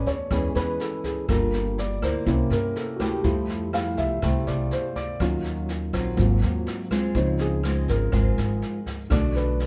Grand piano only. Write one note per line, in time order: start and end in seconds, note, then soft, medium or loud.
0.00 0.31 B3 soft
0.00 0.31 C#4 soft
0.00 1.30 D5 soft
0.07 0.52 C#5 medium
0.31 0.53 G#3 soft
0.31 0.53 B3 soft
0.31 0.53 C#4 soft
0.56 0.79 B4 medium
0.81 1.04 A4 soft
1.05 1.28 G#4 soft
1.28 1.62 A#3 soft
1.28 1.62 F4 soft
1.28 1.61 A4 soft
1.79 2.02 D5 medium
2.03 2.48 C5 medium
2.26 2.96 A#3 soft
2.26 2.96 C#4 soft
2.26 2.97 E4 soft
2.51 2.75 A#4 medium
2.77 3.00 A4 soft
2.96 2.99 F#4 soft
3.00 3.24 G4 medium
3.23 5.16 G3 soft
3.23 5.16 A3 soft
3.23 5.16 E4 soft
3.74 3.98 F5 medium
3.98 4.43 E5 medium
4.47 4.71 D5 medium
4.73 4.96 C5 medium
4.96 5.11 D5 medium
5.20 5.53 F#3 soft
5.20 5.53 C#4 soft
5.20 5.54 F4 soft
6.17 7.11 F#3 soft
6.17 7.12 A#3 soft
6.17 7.12 C4 soft
6.17 7.12 F4 soft
7.15 7.48 F3 soft
7.15 7.48 C4 soft
7.15 7.48 D#4 soft
7.15 7.40 C5 medium
7.40 7.86 G#4 medium
7.89 8.35 A#4 medium
9.10 9.66 D3 soft
9.10 9.66 A3 soft
9.10 9.35 D5 medium
9.36 9.66 B4 medium